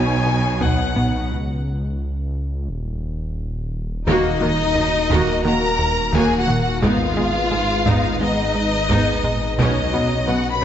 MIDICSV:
0, 0, Header, 1, 13, 480
1, 0, Start_track
1, 0, Key_signature, -6, "minor"
1, 0, Tempo, 689655
1, 912, Time_signature, 4, 2, 24, 8
1, 7408, End_track
2, 0, Start_track
2, 0, Title_t, "Violin"
2, 0, Program_c, 0, 40
2, 0, Note_on_c, 0, 80, 106
2, 434, Note_on_c, 0, 78, 95
2, 445, Note_off_c, 0, 80, 0
2, 913, Note_off_c, 0, 78, 0
2, 7408, End_track
3, 0, Start_track
3, 0, Title_t, "Violin section"
3, 0, Program_c, 1, 48
3, 0, Note_on_c, 1, 73, 77
3, 884, Note_off_c, 1, 73, 0
3, 2826, Note_on_c, 1, 75, 114
3, 3761, Note_off_c, 1, 75, 0
3, 3796, Note_on_c, 1, 82, 116
3, 4274, Note_off_c, 1, 82, 0
3, 4278, Note_on_c, 1, 80, 105
3, 4435, Note_off_c, 1, 80, 0
3, 4447, Note_on_c, 1, 78, 113
3, 4592, Note_off_c, 1, 78, 0
3, 4600, Note_on_c, 1, 78, 97
3, 4753, Note_off_c, 1, 78, 0
3, 4754, Note_on_c, 1, 77, 112
3, 5694, Note_off_c, 1, 77, 0
3, 5713, Note_on_c, 1, 75, 125
3, 6653, Note_off_c, 1, 75, 0
3, 6672, Note_on_c, 1, 75, 109
3, 7143, Note_off_c, 1, 75, 0
3, 7145, Note_on_c, 1, 78, 107
3, 7309, Note_off_c, 1, 78, 0
3, 7314, Note_on_c, 1, 83, 105
3, 7408, Note_off_c, 1, 83, 0
3, 7408, End_track
4, 0, Start_track
4, 0, Title_t, "Violin section"
4, 0, Program_c, 2, 48
4, 0, Note_on_c, 2, 80, 100
4, 426, Note_on_c, 2, 78, 75
4, 428, Note_off_c, 2, 80, 0
4, 909, Note_off_c, 2, 78, 0
4, 2835, Note_on_c, 2, 63, 115
4, 3766, Note_off_c, 2, 63, 0
4, 3797, Note_on_c, 2, 70, 101
4, 4274, Note_on_c, 2, 68, 103
4, 4275, Note_off_c, 2, 70, 0
4, 4430, Note_off_c, 2, 68, 0
4, 4436, Note_on_c, 2, 66, 93
4, 4587, Note_off_c, 2, 66, 0
4, 4595, Note_on_c, 2, 66, 91
4, 4750, Note_off_c, 2, 66, 0
4, 4750, Note_on_c, 2, 65, 116
4, 5711, Note_off_c, 2, 65, 0
4, 5716, Note_on_c, 2, 63, 107
4, 6655, Note_off_c, 2, 63, 0
4, 6676, Note_on_c, 2, 63, 90
4, 7145, Note_off_c, 2, 63, 0
4, 7154, Note_on_c, 2, 66, 91
4, 7310, Note_on_c, 2, 71, 80
4, 7313, Note_off_c, 2, 66, 0
4, 7408, Note_off_c, 2, 71, 0
4, 7408, End_track
5, 0, Start_track
5, 0, Title_t, "Analog synth pad"
5, 0, Program_c, 3, 89
5, 0, Note_on_c, 3, 54, 81
5, 0, Note_on_c, 3, 59, 84
5, 0, Note_on_c, 3, 63, 84
5, 0, Note_on_c, 3, 73, 82
5, 878, Note_off_c, 3, 63, 0
5, 907, Note_off_c, 3, 73, 0
5, 908, Note_off_c, 3, 54, 0
5, 911, Note_off_c, 3, 59, 0
5, 2832, Note_on_c, 3, 58, 92
5, 2832, Note_on_c, 3, 63, 96
5, 2836, Note_on_c, 3, 70, 90
5, 2837, Note_on_c, 3, 66, 91
5, 4724, Note_off_c, 3, 58, 0
5, 4726, Note_off_c, 3, 70, 0
5, 4727, Note_off_c, 3, 66, 0
5, 4751, Note_on_c, 3, 68, 86
5, 4754, Note_on_c, 3, 56, 92
5, 4756, Note_on_c, 3, 71, 93
5, 6644, Note_off_c, 3, 63, 0
5, 6672, Note_off_c, 3, 68, 0
5, 6673, Note_off_c, 3, 56, 0
5, 6674, Note_off_c, 3, 71, 0
5, 6674, Note_on_c, 3, 61, 89
5, 6676, Note_on_c, 3, 66, 88
5, 6677, Note_on_c, 3, 59, 87
5, 6677, Note_on_c, 3, 73, 89
5, 7408, Note_off_c, 3, 59, 0
5, 7408, Note_off_c, 3, 61, 0
5, 7408, Note_off_c, 3, 66, 0
5, 7408, Note_off_c, 3, 73, 0
5, 7408, End_track
6, 0, Start_track
6, 0, Title_t, "French horn section"
6, 0, Program_c, 4, 60
6, 0, Note_on_c, 4, 54, 73
6, 0, Note_on_c, 4, 63, 72
6, 880, Note_off_c, 4, 63, 0
6, 882, Note_off_c, 4, 54, 0
6, 2837, Note_on_c, 4, 66, 84
6, 2839, Note_on_c, 4, 58, 81
6, 3003, Note_off_c, 4, 66, 0
6, 3004, Note_off_c, 4, 58, 0
6, 3797, Note_on_c, 4, 66, 82
6, 3801, Note_on_c, 4, 58, 81
6, 3963, Note_off_c, 4, 66, 0
6, 3965, Note_off_c, 4, 58, 0
6, 4758, Note_on_c, 4, 59, 78
6, 4761, Note_on_c, 4, 63, 80
6, 4923, Note_off_c, 4, 59, 0
6, 4925, Note_off_c, 4, 63, 0
6, 5714, Note_on_c, 4, 59, 80
6, 5716, Note_on_c, 4, 63, 79
6, 5881, Note_off_c, 4, 59, 0
6, 5882, Note_off_c, 4, 63, 0
6, 6683, Note_on_c, 4, 59, 74
6, 6683, Note_on_c, 4, 61, 82
6, 6846, Note_off_c, 4, 59, 0
6, 6847, Note_off_c, 4, 61, 0
6, 7408, End_track
7, 0, Start_track
7, 0, Title_t, "Synth arpeggio sound"
7, 0, Program_c, 5, 84
7, 0, Note_on_c, 5, 66, 70
7, 91, Note_off_c, 5, 66, 0
7, 425, Note_on_c, 5, 59, 95
7, 571, Note_off_c, 5, 59, 0
7, 2832, Note_on_c, 5, 51, 116
7, 2976, Note_off_c, 5, 51, 0
7, 3070, Note_on_c, 5, 58, 85
7, 3215, Note_off_c, 5, 58, 0
7, 3309, Note_on_c, 5, 63, 73
7, 3454, Note_off_c, 5, 63, 0
7, 3547, Note_on_c, 5, 51, 115
7, 3692, Note_off_c, 5, 51, 0
7, 3791, Note_on_c, 5, 58, 81
7, 3935, Note_off_c, 5, 58, 0
7, 4267, Note_on_c, 5, 51, 107
7, 4412, Note_off_c, 5, 51, 0
7, 4750, Note_on_c, 5, 56, 110
7, 4895, Note_off_c, 5, 56, 0
7, 4988, Note_on_c, 5, 63, 75
7, 5133, Note_off_c, 5, 63, 0
7, 5232, Note_on_c, 5, 68, 72
7, 5376, Note_off_c, 5, 68, 0
7, 5471, Note_on_c, 5, 56, 112
7, 5615, Note_off_c, 5, 56, 0
7, 5711, Note_on_c, 5, 63, 76
7, 5855, Note_off_c, 5, 63, 0
7, 6190, Note_on_c, 5, 56, 104
7, 6334, Note_off_c, 5, 56, 0
7, 6676, Note_on_c, 5, 59, 109
7, 6819, Note_off_c, 5, 59, 0
7, 6912, Note_on_c, 5, 66, 70
7, 7056, Note_off_c, 5, 66, 0
7, 7152, Note_on_c, 5, 71, 67
7, 7296, Note_off_c, 5, 71, 0
7, 7408, End_track
8, 0, Start_track
8, 0, Title_t, "Viola section"
8, 0, Program_c, 6, 48
8, 0, Note_on_c, 6, 59, 79
8, 0, Note_on_c, 6, 63, 70
8, 884, Note_off_c, 6, 63, 0
8, 885, Note_off_c, 6, 59, 0
8, 2837, Note_on_c, 6, 58, 107
8, 2838, Note_on_c, 6, 66, 107
8, 3058, Note_off_c, 6, 58, 0
8, 3059, Note_off_c, 6, 66, 0
8, 3074, Note_on_c, 6, 66, 68
8, 3076, Note_on_c, 6, 58, 61
8, 3130, Note_off_c, 6, 66, 0
8, 3132, Note_off_c, 6, 58, 0
8, 3317, Note_on_c, 6, 54, 66
8, 3317, Note_on_c, 6, 63, 68
8, 3373, Note_off_c, 6, 54, 0
8, 3373, Note_off_c, 6, 63, 0
8, 3556, Note_on_c, 6, 66, 99
8, 3559, Note_on_c, 6, 58, 93
8, 3778, Note_off_c, 6, 66, 0
8, 3779, Note_off_c, 6, 58, 0
8, 3791, Note_on_c, 6, 66, 77
8, 3796, Note_on_c, 6, 58, 65
8, 3847, Note_off_c, 6, 66, 0
8, 3852, Note_off_c, 6, 58, 0
8, 4276, Note_on_c, 6, 66, 91
8, 4277, Note_on_c, 6, 58, 99
8, 4497, Note_off_c, 6, 66, 0
8, 4498, Note_off_c, 6, 58, 0
8, 4754, Note_on_c, 6, 63, 83
8, 4756, Note_on_c, 6, 59, 92
8, 4976, Note_off_c, 6, 63, 0
8, 4977, Note_off_c, 6, 59, 0
8, 5000, Note_on_c, 6, 59, 65
8, 5000, Note_on_c, 6, 63, 64
8, 5056, Note_off_c, 6, 59, 0
8, 5056, Note_off_c, 6, 63, 0
8, 5238, Note_on_c, 6, 59, 63
8, 5239, Note_on_c, 6, 56, 65
8, 5294, Note_off_c, 6, 59, 0
8, 5295, Note_off_c, 6, 56, 0
8, 5481, Note_on_c, 6, 59, 83
8, 5481, Note_on_c, 6, 63, 98
8, 5700, Note_off_c, 6, 59, 0
8, 5700, Note_off_c, 6, 63, 0
8, 5719, Note_on_c, 6, 59, 62
8, 5719, Note_on_c, 6, 63, 67
8, 5774, Note_off_c, 6, 59, 0
8, 5775, Note_off_c, 6, 63, 0
8, 6198, Note_on_c, 6, 59, 89
8, 6198, Note_on_c, 6, 63, 96
8, 6418, Note_off_c, 6, 59, 0
8, 6418, Note_off_c, 6, 63, 0
8, 6681, Note_on_c, 6, 59, 91
8, 6681, Note_on_c, 6, 61, 89
8, 6900, Note_off_c, 6, 59, 0
8, 6900, Note_off_c, 6, 61, 0
8, 6912, Note_on_c, 6, 61, 61
8, 6916, Note_on_c, 6, 59, 57
8, 6968, Note_off_c, 6, 61, 0
8, 6972, Note_off_c, 6, 59, 0
8, 7154, Note_on_c, 6, 54, 57
8, 7155, Note_on_c, 6, 59, 64
8, 7210, Note_off_c, 6, 54, 0
8, 7211, Note_off_c, 6, 59, 0
8, 7408, End_track
9, 0, Start_track
9, 0, Title_t, "Analog synth bass"
9, 0, Program_c, 7, 38
9, 0, Note_on_c, 7, 59, 71
9, 94, Note_off_c, 7, 59, 0
9, 184, Note_on_c, 7, 47, 68
9, 330, Note_off_c, 7, 47, 0
9, 424, Note_on_c, 7, 47, 99
9, 571, Note_off_c, 7, 47, 0
9, 669, Note_on_c, 7, 59, 74
9, 814, Note_off_c, 7, 59, 0
9, 2835, Note_on_c, 7, 39, 107
9, 2978, Note_off_c, 7, 39, 0
9, 3076, Note_on_c, 7, 51, 79
9, 3219, Note_off_c, 7, 51, 0
9, 3308, Note_on_c, 7, 39, 81
9, 3454, Note_off_c, 7, 39, 0
9, 3550, Note_on_c, 7, 39, 117
9, 3695, Note_off_c, 7, 39, 0
9, 3790, Note_on_c, 7, 51, 82
9, 3935, Note_off_c, 7, 51, 0
9, 4027, Note_on_c, 7, 39, 76
9, 4173, Note_off_c, 7, 39, 0
9, 4263, Note_on_c, 7, 39, 110
9, 4410, Note_off_c, 7, 39, 0
9, 4504, Note_on_c, 7, 51, 81
9, 4651, Note_off_c, 7, 51, 0
9, 4747, Note_on_c, 7, 44, 108
9, 4893, Note_off_c, 7, 44, 0
9, 4989, Note_on_c, 7, 56, 79
9, 5134, Note_off_c, 7, 56, 0
9, 5229, Note_on_c, 7, 44, 76
9, 5374, Note_off_c, 7, 44, 0
9, 5469, Note_on_c, 7, 44, 104
9, 5614, Note_off_c, 7, 44, 0
9, 5714, Note_on_c, 7, 56, 75
9, 5857, Note_off_c, 7, 56, 0
9, 5952, Note_on_c, 7, 44, 78
9, 6096, Note_off_c, 7, 44, 0
9, 6194, Note_on_c, 7, 44, 101
9, 6337, Note_off_c, 7, 44, 0
9, 6433, Note_on_c, 7, 56, 73
9, 6577, Note_off_c, 7, 56, 0
9, 6671, Note_on_c, 7, 47, 106
9, 6815, Note_off_c, 7, 47, 0
9, 6917, Note_on_c, 7, 59, 80
9, 7060, Note_off_c, 7, 59, 0
9, 7156, Note_on_c, 7, 47, 74
9, 7299, Note_off_c, 7, 47, 0
9, 7408, End_track
10, 0, Start_track
10, 0, Title_t, "Cello section"
10, 0, Program_c, 8, 48
10, 0, Note_on_c, 8, 47, 82
10, 911, Note_off_c, 8, 47, 0
10, 2837, Note_on_c, 8, 51, 93
10, 2893, Note_off_c, 8, 51, 0
10, 3080, Note_on_c, 8, 51, 68
10, 3136, Note_off_c, 8, 51, 0
10, 3319, Note_on_c, 8, 51, 66
10, 3375, Note_off_c, 8, 51, 0
10, 3555, Note_on_c, 8, 51, 92
10, 3611, Note_off_c, 8, 51, 0
10, 3794, Note_on_c, 8, 51, 71
10, 3849, Note_off_c, 8, 51, 0
10, 4277, Note_on_c, 8, 51, 91
10, 4332, Note_off_c, 8, 51, 0
10, 4755, Note_on_c, 8, 44, 98
10, 4810, Note_off_c, 8, 44, 0
10, 4993, Note_on_c, 8, 44, 70
10, 5049, Note_off_c, 8, 44, 0
10, 5237, Note_on_c, 8, 44, 61
10, 5292, Note_off_c, 8, 44, 0
10, 5476, Note_on_c, 8, 44, 91
10, 5532, Note_off_c, 8, 44, 0
10, 5714, Note_on_c, 8, 44, 61
10, 5769, Note_off_c, 8, 44, 0
10, 6195, Note_on_c, 8, 44, 84
10, 6251, Note_off_c, 8, 44, 0
10, 6676, Note_on_c, 8, 47, 89
10, 6732, Note_off_c, 8, 47, 0
10, 6915, Note_on_c, 8, 47, 62
10, 6971, Note_off_c, 8, 47, 0
10, 7158, Note_on_c, 8, 47, 65
10, 7213, Note_off_c, 8, 47, 0
10, 7408, End_track
11, 0, Start_track
11, 0, Title_t, "Double bass section"
11, 0, Program_c, 10, 48
11, 0, Note_on_c, 10, 35, 82
11, 910, Note_off_c, 10, 35, 0
11, 2838, Note_on_c, 10, 39, 100
11, 2894, Note_off_c, 10, 39, 0
11, 3078, Note_on_c, 10, 39, 77
11, 3133, Note_off_c, 10, 39, 0
11, 3314, Note_on_c, 10, 39, 70
11, 3370, Note_off_c, 10, 39, 0
11, 3551, Note_on_c, 10, 39, 100
11, 3607, Note_off_c, 10, 39, 0
11, 3794, Note_on_c, 10, 39, 76
11, 3850, Note_off_c, 10, 39, 0
11, 4273, Note_on_c, 10, 39, 104
11, 4328, Note_off_c, 10, 39, 0
11, 4751, Note_on_c, 10, 32, 90
11, 4806, Note_off_c, 10, 32, 0
11, 4994, Note_on_c, 10, 32, 72
11, 5050, Note_off_c, 10, 32, 0
11, 5234, Note_on_c, 10, 32, 69
11, 5289, Note_off_c, 10, 32, 0
11, 5475, Note_on_c, 10, 32, 97
11, 5530, Note_off_c, 10, 32, 0
11, 5714, Note_on_c, 10, 32, 67
11, 5770, Note_off_c, 10, 32, 0
11, 6194, Note_on_c, 10, 32, 88
11, 6249, Note_off_c, 10, 32, 0
11, 6671, Note_on_c, 10, 35, 91
11, 6727, Note_off_c, 10, 35, 0
11, 6914, Note_on_c, 10, 35, 69
11, 6969, Note_off_c, 10, 35, 0
11, 7153, Note_on_c, 10, 35, 66
11, 7209, Note_off_c, 10, 35, 0
11, 7408, End_track
12, 0, Start_track
12, 0, Title_t, "Detuned saw bass"
12, 0, Program_c, 11, 39
12, 0, Note_on_c, 11, 35, 80
12, 909, Note_on_c, 11, 37, 82
12, 919, Note_off_c, 11, 35, 0
12, 1870, Note_on_c, 11, 27, 75
12, 1880, Note_off_c, 11, 37, 0
12, 2831, Note_off_c, 11, 27, 0
12, 2837, Note_on_c, 11, 27, 94
12, 4752, Note_on_c, 11, 32, 91
12, 4763, Note_off_c, 11, 27, 0
12, 6674, Note_on_c, 11, 35, 88
12, 6685, Note_off_c, 11, 32, 0
12, 7408, Note_off_c, 11, 35, 0
12, 7408, End_track
13, 0, Start_track
13, 0, Title_t, "Taiko and cinematic ensemble drums"
13, 427, Note_on_c, 9, 41, 87
13, 496, Note_off_c, 9, 41, 0
13, 671, Note_on_c, 9, 45, 52
13, 740, Note_off_c, 9, 45, 0
13, 2832, Note_on_c, 9, 41, 105
13, 2902, Note_off_c, 9, 41, 0
13, 3555, Note_on_c, 9, 41, 84
13, 3624, Note_off_c, 9, 41, 0
13, 4277, Note_on_c, 9, 41, 91
13, 4346, Note_off_c, 9, 41, 0
13, 4519, Note_on_c, 9, 45, 60
13, 4589, Note_off_c, 9, 45, 0
13, 4758, Note_on_c, 9, 41, 113
13, 4828, Note_off_c, 9, 41, 0
13, 5478, Note_on_c, 9, 41, 87
13, 5548, Note_off_c, 9, 41, 0
13, 6195, Note_on_c, 9, 41, 87
13, 6264, Note_off_c, 9, 41, 0
13, 6436, Note_on_c, 9, 45, 56
13, 6505, Note_off_c, 9, 45, 0
13, 6674, Note_on_c, 9, 41, 106
13, 6744, Note_off_c, 9, 41, 0
13, 7408, End_track
0, 0, End_of_file